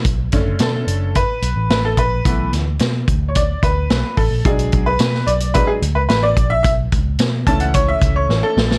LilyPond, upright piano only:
<<
  \new Staff \with { instrumentName = "Upright piano" } { \time 4/4 \key b \minor \tempo 4 = 109 r4 a'4 b'4 b'16 a'16 b'8~ | b'8 r4 r16. cis''32 d''8 b'4 a'8 | gis'8. b'8. d''8 b'16 gis'8 b'16 b'16 d''8 e''16 | e''8 r4 a''16 fis''16 cis''16 e''8 cis''8 a'8. | }
  \new Staff \with { instrumentName = "Upright piano" } { \time 4/4 \key b \minor r8 <d a cis'>4. r2 | <e a b>8 r2. r8 | <fis gis d'>8 r4. <fis gis d'>8 r4. | r4. <e a cis'>2~ <e a cis'>8 | }
>>